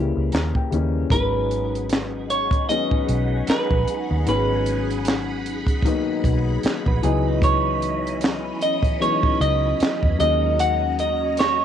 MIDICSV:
0, 0, Header, 1, 8, 480
1, 0, Start_track
1, 0, Key_signature, 5, "minor"
1, 0, Tempo, 789474
1, 671, Time_signature, 4, 2, 24, 8
1, 7082, End_track
2, 0, Start_track
2, 0, Title_t, "Clean electric guitar"
2, 0, Program_c, 0, 27
2, 0, Note_on_c, 0, 67, 68
2, 416, Note_off_c, 0, 67, 0
2, 677, Note_on_c, 0, 71, 82
2, 1398, Note_off_c, 0, 71, 0
2, 1400, Note_on_c, 0, 73, 94
2, 1634, Note_off_c, 0, 73, 0
2, 1637, Note_on_c, 0, 75, 104
2, 2124, Note_off_c, 0, 75, 0
2, 2126, Note_on_c, 0, 71, 79
2, 2574, Note_off_c, 0, 71, 0
2, 2607, Note_on_c, 0, 71, 76
2, 3055, Note_off_c, 0, 71, 0
2, 4522, Note_on_c, 0, 73, 77
2, 5213, Note_off_c, 0, 73, 0
2, 5244, Note_on_c, 0, 75, 78
2, 5461, Note_off_c, 0, 75, 0
2, 5483, Note_on_c, 0, 73, 80
2, 5719, Note_off_c, 0, 73, 0
2, 5722, Note_on_c, 0, 75, 102
2, 6195, Note_off_c, 0, 75, 0
2, 6203, Note_on_c, 0, 75, 97
2, 6442, Note_off_c, 0, 75, 0
2, 6445, Note_on_c, 0, 78, 111
2, 6685, Note_off_c, 0, 78, 0
2, 6687, Note_on_c, 0, 75, 87
2, 6924, Note_off_c, 0, 75, 0
2, 6927, Note_on_c, 0, 73, 85
2, 7082, Note_off_c, 0, 73, 0
2, 7082, End_track
3, 0, Start_track
3, 0, Title_t, "Clean electric guitar"
3, 0, Program_c, 1, 27
3, 4182, Note_on_c, 1, 71, 77
3, 4271, Note_off_c, 1, 71, 0
3, 4277, Note_on_c, 1, 68, 80
3, 4409, Note_off_c, 1, 68, 0
3, 4424, Note_on_c, 1, 63, 74
3, 5114, Note_off_c, 1, 63, 0
3, 7082, End_track
4, 0, Start_track
4, 0, Title_t, "String machine"
4, 0, Program_c, 2, 50
4, 667, Note_on_c, 2, 83, 94
4, 669, Note_on_c, 2, 63, 79
4, 669, Note_on_c, 2, 78, 70
4, 670, Note_on_c, 2, 68, 75
4, 4246, Note_off_c, 2, 63, 0
4, 4246, Note_off_c, 2, 68, 0
4, 4246, Note_off_c, 2, 78, 0
4, 4273, Note_on_c, 2, 52, 81
4, 4276, Note_on_c, 2, 75, 81
4, 4277, Note_on_c, 2, 61, 93
4, 6165, Note_off_c, 2, 83, 0
4, 6173, Note_off_c, 2, 52, 0
4, 6174, Note_off_c, 2, 75, 0
4, 6175, Note_off_c, 2, 61, 0
4, 6191, Note_on_c, 2, 61, 92
4, 6191, Note_on_c, 2, 82, 101
4, 6192, Note_on_c, 2, 75, 79
4, 6193, Note_on_c, 2, 66, 81
4, 7082, Note_off_c, 2, 61, 0
4, 7082, Note_off_c, 2, 66, 0
4, 7082, Note_off_c, 2, 75, 0
4, 7082, Note_off_c, 2, 82, 0
4, 7082, End_track
5, 0, Start_track
5, 0, Title_t, "Grand piano"
5, 0, Program_c, 3, 0
5, 0, Control_c, 3, 64, 127
5, 0, Note_on_c, 3, 49, 67
5, 0, Note_on_c, 3, 52, 59
5, 0, Note_on_c, 3, 55, 57
5, 0, Note_on_c, 3, 58, 63
5, 0, Note_on_c, 3, 61, 77
5, 0, Note_on_c, 3, 64, 69
5, 199, Note_on_c, 3, 82, 68
5, 327, Note_off_c, 3, 82, 0
5, 340, Note_on_c, 3, 79, 60
5, 372, Note_off_c, 3, 49, 0
5, 374, Note_off_c, 3, 52, 0
5, 377, Note_off_c, 3, 55, 0
5, 379, Note_off_c, 3, 58, 0
5, 381, Note_off_c, 3, 64, 0
5, 428, Note_off_c, 3, 79, 0
5, 430, Note_on_c, 3, 49, 69
5, 436, Note_on_c, 3, 52, 66
5, 439, Note_on_c, 3, 75, 59
5, 440, Note_on_c, 3, 55, 64
5, 443, Note_on_c, 3, 58, 58
5, 448, Note_off_c, 3, 61, 0
5, 448, Note_on_c, 3, 61, 76
5, 641, Note_off_c, 3, 49, 0
5, 644, Note_off_c, 3, 52, 0
5, 646, Note_off_c, 3, 55, 0
5, 648, Note_off_c, 3, 58, 0
5, 650, Note_off_c, 3, 61, 0
5, 658, Note_off_c, 3, 75, 0
5, 674, Note_on_c, 3, 51, 65
5, 678, Note_on_c, 3, 54, 61
5, 680, Control_c, 3, 64, 0
5, 682, Note_on_c, 3, 56, 70
5, 685, Note_on_c, 3, 59, 60
5, 688, Note_on_c, 3, 61, 77
5, 783, Control_c, 3, 64, 127
5, 1506, Note_off_c, 3, 51, 0
5, 1508, Note_off_c, 3, 54, 0
5, 1510, Note_off_c, 3, 56, 0
5, 1512, Note_off_c, 3, 59, 0
5, 1513, Note_off_c, 3, 61, 0
5, 1633, Note_on_c, 3, 51, 72
5, 1636, Note_on_c, 3, 54, 62
5, 1638, Note_on_c, 3, 56, 68
5, 1645, Note_on_c, 3, 59, 65
5, 1647, Note_on_c, 3, 61, 80
5, 2466, Note_off_c, 3, 51, 0
5, 2467, Note_off_c, 3, 54, 0
5, 2468, Note_off_c, 3, 56, 0
5, 2472, Note_off_c, 3, 59, 0
5, 2473, Note_off_c, 3, 61, 0
5, 2586, Note_on_c, 3, 51, 65
5, 2590, Note_on_c, 3, 54, 63
5, 2596, Note_on_c, 3, 56, 69
5, 2599, Note_on_c, 3, 59, 69
5, 2604, Note_on_c, 3, 61, 78
5, 3422, Note_off_c, 3, 51, 0
5, 3424, Note_off_c, 3, 54, 0
5, 3427, Note_off_c, 3, 56, 0
5, 3429, Note_off_c, 3, 59, 0
5, 3431, Note_off_c, 3, 61, 0
5, 3552, Note_on_c, 3, 51, 92
5, 3556, Note_on_c, 3, 54, 78
5, 3561, Note_on_c, 3, 58, 73
5, 3566, Note_on_c, 3, 59, 78
5, 3569, Note_on_c, 3, 63, 98
5, 4266, Note_off_c, 3, 54, 0
5, 4269, Note_on_c, 3, 52, 85
5, 4271, Note_off_c, 3, 51, 0
5, 4272, Note_off_c, 3, 59, 0
5, 4275, Note_off_c, 3, 63, 0
5, 4275, Note_on_c, 3, 54, 91
5, 4276, Note_off_c, 3, 58, 0
5, 4276, Note_on_c, 3, 56, 76
5, 4280, Control_c, 3, 64, 0
5, 4281, Note_on_c, 3, 59, 82
5, 4284, Note_on_c, 3, 63, 102
5, 4399, Control_c, 3, 64, 127
5, 5104, Note_off_c, 3, 52, 0
5, 5107, Note_off_c, 3, 54, 0
5, 5107, Note_off_c, 3, 56, 0
5, 5110, Note_off_c, 3, 59, 0
5, 5111, Note_off_c, 3, 63, 0
5, 5472, Note_on_c, 3, 52, 75
5, 5477, Note_on_c, 3, 54, 69
5, 5479, Note_on_c, 3, 56, 68
5, 5482, Note_on_c, 3, 59, 68
5, 5487, Note_on_c, 3, 61, 63
5, 5526, Note_off_c, 3, 61, 0
5, 5527, Note_on_c, 3, 63, 84
5, 6183, Note_off_c, 3, 54, 0
5, 6188, Note_off_c, 3, 56, 0
5, 6192, Note_off_c, 3, 52, 0
5, 6192, Note_on_c, 3, 54, 72
5, 6197, Note_off_c, 3, 59, 0
5, 6197, Note_on_c, 3, 56, 64
5, 6199, Note_off_c, 3, 63, 0
5, 6200, Control_c, 3, 64, 0
5, 6203, Note_on_c, 3, 58, 68
5, 6207, Note_on_c, 3, 61, 74
5, 6208, Note_on_c, 3, 63, 89
5, 6298, Control_c, 3, 64, 127
5, 7025, Note_off_c, 3, 54, 0
5, 7028, Note_off_c, 3, 56, 0
5, 7031, Note_off_c, 3, 58, 0
5, 7033, Note_off_c, 3, 61, 0
5, 7033, Note_off_c, 3, 63, 0
5, 7082, End_track
6, 0, Start_track
6, 0, Title_t, "Fingered electric bass"
6, 0, Program_c, 4, 33
6, 0, Note_on_c, 4, 37, 70
6, 71, Note_off_c, 4, 37, 0
6, 100, Note_on_c, 4, 37, 73
6, 177, Note_off_c, 4, 37, 0
6, 199, Note_on_c, 4, 39, 78
6, 311, Note_off_c, 4, 39, 0
6, 437, Note_on_c, 4, 39, 73
6, 630, Note_off_c, 4, 39, 0
6, 675, Note_on_c, 4, 32, 91
6, 1511, Note_off_c, 4, 32, 0
6, 1879, Note_on_c, 4, 35, 86
6, 2071, Note_off_c, 4, 35, 0
6, 2256, Note_on_c, 4, 34, 95
6, 2335, Note_off_c, 4, 34, 0
6, 2497, Note_on_c, 4, 39, 100
6, 2575, Note_off_c, 4, 39, 0
6, 2597, Note_on_c, 4, 32, 86
6, 3432, Note_off_c, 4, 32, 0
6, 3797, Note_on_c, 4, 35, 84
6, 3990, Note_off_c, 4, 35, 0
6, 4177, Note_on_c, 4, 34, 88
6, 4255, Note_off_c, 4, 34, 0
6, 4279, Note_on_c, 4, 37, 87
6, 5172, Note_off_c, 4, 37, 0
6, 5718, Note_on_c, 4, 37, 84
6, 5910, Note_off_c, 4, 37, 0
6, 6100, Note_on_c, 4, 40, 88
6, 6177, Note_off_c, 4, 40, 0
6, 6204, Note_on_c, 4, 39, 92
6, 7082, Note_off_c, 4, 39, 0
6, 7082, End_track
7, 0, Start_track
7, 0, Title_t, "Muted fingered electric bass strokes"
7, 2118, Note_on_c, 9, 29, 43
7, 2179, Note_off_c, 9, 29, 0
7, 4039, Note_on_c, 9, 29, 45
7, 4100, Note_off_c, 9, 29, 0
7, 5961, Note_on_c, 9, 29, 47
7, 6022, Note_off_c, 9, 29, 0
7, 7082, End_track
8, 0, Start_track
8, 0, Title_t, "Drums"
8, 195, Note_on_c, 9, 42, 62
8, 210, Note_on_c, 9, 38, 99
8, 216, Note_on_c, 9, 39, 83
8, 256, Note_off_c, 9, 42, 0
8, 271, Note_off_c, 9, 38, 0
8, 277, Note_off_c, 9, 39, 0
8, 335, Note_on_c, 9, 36, 82
8, 395, Note_off_c, 9, 36, 0
8, 440, Note_on_c, 9, 42, 55
8, 501, Note_off_c, 9, 42, 0
8, 671, Note_on_c, 9, 36, 120
8, 680, Note_on_c, 9, 42, 93
8, 732, Note_off_c, 9, 36, 0
8, 741, Note_off_c, 9, 42, 0
8, 918, Note_on_c, 9, 42, 54
8, 979, Note_off_c, 9, 42, 0
8, 1066, Note_on_c, 9, 42, 44
8, 1126, Note_off_c, 9, 42, 0
8, 1152, Note_on_c, 9, 42, 85
8, 1171, Note_on_c, 9, 38, 123
8, 1177, Note_on_c, 9, 39, 90
8, 1213, Note_off_c, 9, 42, 0
8, 1232, Note_off_c, 9, 38, 0
8, 1238, Note_off_c, 9, 39, 0
8, 1399, Note_on_c, 9, 42, 63
8, 1460, Note_off_c, 9, 42, 0
8, 1526, Note_on_c, 9, 36, 97
8, 1536, Note_on_c, 9, 42, 46
8, 1587, Note_off_c, 9, 36, 0
8, 1596, Note_off_c, 9, 42, 0
8, 1641, Note_on_c, 9, 42, 72
8, 1702, Note_off_c, 9, 42, 0
8, 1771, Note_on_c, 9, 36, 76
8, 1832, Note_off_c, 9, 36, 0
8, 1876, Note_on_c, 9, 42, 61
8, 1937, Note_off_c, 9, 42, 0
8, 2111, Note_on_c, 9, 42, 73
8, 2126, Note_on_c, 9, 38, 107
8, 2132, Note_on_c, 9, 39, 95
8, 2172, Note_off_c, 9, 42, 0
8, 2187, Note_off_c, 9, 38, 0
8, 2193, Note_off_c, 9, 39, 0
8, 2253, Note_on_c, 9, 36, 88
8, 2313, Note_off_c, 9, 36, 0
8, 2356, Note_on_c, 9, 42, 66
8, 2417, Note_off_c, 9, 42, 0
8, 2594, Note_on_c, 9, 42, 92
8, 2655, Note_off_c, 9, 42, 0
8, 2834, Note_on_c, 9, 42, 56
8, 2895, Note_off_c, 9, 42, 0
8, 2983, Note_on_c, 9, 42, 42
8, 3044, Note_off_c, 9, 42, 0
8, 3071, Note_on_c, 9, 42, 80
8, 3090, Note_on_c, 9, 38, 111
8, 3096, Note_on_c, 9, 39, 93
8, 3131, Note_off_c, 9, 42, 0
8, 3151, Note_off_c, 9, 38, 0
8, 3157, Note_off_c, 9, 39, 0
8, 3320, Note_on_c, 9, 42, 60
8, 3381, Note_off_c, 9, 42, 0
8, 3445, Note_on_c, 9, 36, 87
8, 3454, Note_on_c, 9, 42, 48
8, 3506, Note_off_c, 9, 36, 0
8, 3514, Note_off_c, 9, 42, 0
8, 3542, Note_on_c, 9, 36, 84
8, 3562, Note_on_c, 9, 42, 69
8, 3603, Note_off_c, 9, 36, 0
8, 3623, Note_off_c, 9, 42, 0
8, 3794, Note_on_c, 9, 36, 82
8, 3798, Note_on_c, 9, 42, 59
8, 3855, Note_off_c, 9, 36, 0
8, 3859, Note_off_c, 9, 42, 0
8, 4034, Note_on_c, 9, 42, 68
8, 4049, Note_on_c, 9, 38, 122
8, 4055, Note_on_c, 9, 39, 91
8, 4094, Note_off_c, 9, 42, 0
8, 4110, Note_off_c, 9, 38, 0
8, 4115, Note_off_c, 9, 39, 0
8, 4173, Note_on_c, 9, 36, 91
8, 4234, Note_off_c, 9, 36, 0
8, 4276, Note_on_c, 9, 42, 64
8, 4337, Note_off_c, 9, 42, 0
8, 4510, Note_on_c, 9, 36, 123
8, 4517, Note_on_c, 9, 42, 97
8, 4571, Note_off_c, 9, 36, 0
8, 4578, Note_off_c, 9, 42, 0
8, 4756, Note_on_c, 9, 42, 61
8, 4817, Note_off_c, 9, 42, 0
8, 4906, Note_on_c, 9, 42, 46
8, 4966, Note_off_c, 9, 42, 0
8, 4991, Note_on_c, 9, 42, 76
8, 5011, Note_on_c, 9, 38, 117
8, 5016, Note_on_c, 9, 39, 84
8, 5052, Note_off_c, 9, 42, 0
8, 5071, Note_off_c, 9, 38, 0
8, 5077, Note_off_c, 9, 39, 0
8, 5238, Note_on_c, 9, 42, 65
8, 5299, Note_off_c, 9, 42, 0
8, 5367, Note_on_c, 9, 36, 91
8, 5377, Note_on_c, 9, 42, 45
8, 5427, Note_off_c, 9, 36, 0
8, 5438, Note_off_c, 9, 42, 0
8, 5484, Note_on_c, 9, 42, 69
8, 5545, Note_off_c, 9, 42, 0
8, 5613, Note_on_c, 9, 36, 79
8, 5674, Note_off_c, 9, 36, 0
8, 5723, Note_on_c, 9, 42, 62
8, 5784, Note_off_c, 9, 42, 0
8, 5958, Note_on_c, 9, 42, 68
8, 5974, Note_on_c, 9, 38, 108
8, 5979, Note_on_c, 9, 39, 100
8, 6019, Note_off_c, 9, 42, 0
8, 6035, Note_off_c, 9, 38, 0
8, 6040, Note_off_c, 9, 39, 0
8, 6096, Note_on_c, 9, 36, 85
8, 6157, Note_off_c, 9, 36, 0
8, 6201, Note_on_c, 9, 42, 62
8, 6261, Note_off_c, 9, 42, 0
8, 6441, Note_on_c, 9, 42, 99
8, 6502, Note_off_c, 9, 42, 0
8, 6680, Note_on_c, 9, 42, 54
8, 6741, Note_off_c, 9, 42, 0
8, 6914, Note_on_c, 9, 42, 75
8, 6933, Note_on_c, 9, 38, 110
8, 6939, Note_on_c, 9, 39, 86
8, 6974, Note_off_c, 9, 42, 0
8, 6994, Note_off_c, 9, 38, 0
8, 7000, Note_off_c, 9, 39, 0
8, 7082, End_track
0, 0, End_of_file